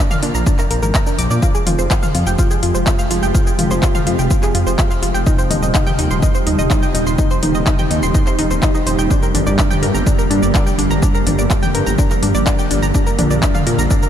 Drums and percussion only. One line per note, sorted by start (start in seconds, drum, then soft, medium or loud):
0.11 mid tom medium
0.11 shaker soft
0.23 open hi-hat loud
0.23 shaker soft
0.35 shaker soft
0.46 kick loud
0.46 shaker medium
0.59 clap soft
0.59 shaker soft
0.71 open hi-hat loud
0.71 shaker soft
0.83 shaker soft
0.94 kick loud
0.94 clap loud
0.94 shaker medium
1.07 shaker soft
1.19 open hi-hat loud
1.19 shaker soft
1.31 shaker soft
1.42 kick loud
1.42 shaker medium
1.55 shaker soft
1.67 open hi-hat loud
1.67 mid tom medium
1.67 shaker soft
1.79 shaker soft
1.91 kick loud
1.91 clap loud
1.91 shaker medium
2.03 mid tom medium
2.03 shaker soft
2.15 open hi-hat loud
2.15 shaker soft
2.27 shaker soft
2.39 kick loud
2.39 shaker medium
2.51 shaker soft
2.63 open hi-hat loud
2.75 shaker soft
2.87 kick loud
2.87 clap loud
2.87 shaker medium
2.99 shaker soft
3.11 open hi-hat loud
3.11 shaker soft
3.23 shaker soft
3.35 kick loud
3.35 shaker medium
3.47 shaker soft
3.59 open hi-hat loud
3.59 mid tom medium
3.59 shaker soft
3.71 shaker soft
3.83 kick loud
3.83 clap loud
3.83 shaker medium
3.95 mid tom medium
3.95 shaker soft
4.07 open hi-hat loud
4.07 shaker soft
4.19 shaker soft
4.31 kick loud
4.31 shaker medium
4.43 clap soft
4.43 shaker soft
4.55 open hi-hat loud
4.67 shaker soft
4.79 kick loud
4.79 clap loud
4.79 shaker medium
4.91 shaker soft
5.03 open hi-hat loud
5.03 shaker soft
5.15 shaker soft
5.27 kick loud
5.27 shaker medium
5.39 shaker soft
5.51 open hi-hat loud
5.51 mid tom medium
5.51 shaker soft
5.63 shaker soft
5.75 kick loud
5.75 clap loud
5.75 shaker medium
5.87 mid tom medium
5.87 shaker soft
5.99 open hi-hat loud
5.99 shaker soft
6.11 shaker soft
6.22 kick loud
6.22 shaker medium
6.35 shaker soft
6.47 open hi-hat loud
6.59 shaker soft
6.70 kick loud
6.70 clap loud
6.70 shaker medium
6.83 shaker soft
6.95 open hi-hat loud
6.95 shaker soft
7.07 shaker soft
7.18 kick loud
7.18 shaker medium
7.31 shaker soft
7.43 open hi-hat loud
7.43 mid tom medium
7.43 shaker soft
7.55 shaker soft
7.66 kick loud
7.66 clap loud
7.66 shaker medium
7.79 mid tom medium
7.79 shaker soft
7.91 open hi-hat loud
7.91 shaker soft
8.03 shaker soft
8.15 kick loud
8.15 shaker medium
8.27 clap soft
8.27 shaker soft
8.39 open hi-hat loud
8.51 shaker soft
8.63 kick loud
8.63 clap loud
8.63 shaker medium
8.75 shaker soft
8.87 open hi-hat loud
8.87 shaker soft
8.99 shaker soft
9.11 kick loud
9.11 shaker medium
9.23 shaker soft
9.35 open hi-hat loud
9.35 mid tom medium
9.35 shaker soft
9.47 shaker soft
9.59 kick loud
9.59 clap loud
9.59 shaker medium
9.71 mid tom medium
9.71 shaker soft
9.83 open hi-hat loud
9.83 shaker soft
9.95 shaker soft
10.07 kick loud
10.07 shaker medium
10.19 shaker soft
10.31 open hi-hat loud
10.43 shaker soft
10.55 kick loud
10.55 clap loud
10.55 shaker medium
10.67 shaker soft
10.79 open hi-hat loud
10.79 shaker soft
10.91 shaker soft
11.02 kick loud
11.02 shaker medium
11.15 shaker soft
11.27 open hi-hat loud
11.27 mid tom medium
11.27 shaker soft
11.39 shaker soft
11.50 kick loud
11.50 clap loud
11.50 shaker medium
11.63 mid tom medium
11.63 shaker soft
11.75 open hi-hat loud
11.75 shaker soft
11.87 shaker soft
11.98 kick loud
11.98 shaker medium
12.11 clap soft
12.11 shaker soft
12.23 open hi-hat loud
12.35 shaker soft
12.46 kick loud
12.46 clap loud
12.46 shaker medium
12.59 shaker soft
12.71 open hi-hat loud
12.71 shaker soft
12.83 shaker soft
12.95 kick loud
12.95 shaker medium
13.07 shaker soft
13.19 open hi-hat loud
13.19 mid tom medium
13.19 shaker soft
13.31 shaker soft
13.43 kick loud
13.43 clap loud
13.43 shaker medium
13.55 mid tom medium
13.55 shaker soft
13.67 open hi-hat loud
13.67 shaker soft
13.79 shaker soft
13.91 kick loud
13.91 shaker medium
14.03 shaker soft